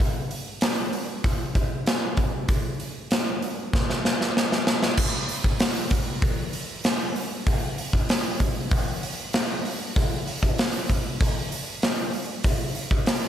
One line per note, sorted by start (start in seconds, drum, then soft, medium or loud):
0.00 kick loud
0.00 open hi-hat medium
0.31 open hi-hat medium
0.61 snare loud
0.61 open hi-hat medium
0.93 open hi-hat medium
1.24 kick loud
1.24 open hi-hat medium
1.55 kick loud
1.55 open hi-hat medium
1.86 snare loud
1.86 open hi-hat medium
2.17 kick medium
2.17 open hi-hat soft
2.48 kick loud
2.48 open hi-hat medium
2.80 open hi-hat medium
3.11 snare loud
3.11 open hi-hat medium
3.42 open hi-hat medium
3.73 kick loud
3.73 snare medium
3.90 snare medium
4.05 snare medium
4.21 snare medium
4.37 snare medium
4.52 snare medium
4.67 snare medium
4.83 snare medium
4.97 kick loud
4.97 crash loud
5.29 open hi-hat medium
5.44 kick medium
5.59 snare loud
5.59 open hi-hat medium
5.90 kick loud
5.90 open hi-hat medium
6.22 kick loud
6.22 open hi-hat medium
6.53 open hi-hat medium
6.84 snare loud
6.84 open hi-hat medium
7.16 open hi-hat medium
7.47 kick loud
7.47 open hi-hat medium
7.78 open hi-hat medium
7.93 kick medium
8.09 snare loud
8.09 open hi-hat medium
8.40 kick medium
8.40 open hi-hat medium
8.71 kick loud
8.71 open hi-hat medium
9.03 open hi-hat medium
9.33 snare loud
9.33 open hi-hat medium
9.65 open hi-hat medium
9.96 kick loud
9.96 open hi-hat medium
10.27 open hi-hat medium
10.43 kick medium
10.58 snare loud
10.58 open hi-hat loud
10.90 kick medium
10.90 open hi-hat medium
11.21 kick loud
11.21 open hi-hat medium
11.52 open hi-hat medium
11.82 snare loud
11.82 open hi-hat medium
12.13 open hi-hat medium
12.44 kick loud
12.44 open hi-hat medium
12.75 open hi-hat medium
12.91 kick loud
13.06 snare loud
13.06 open hi-hat medium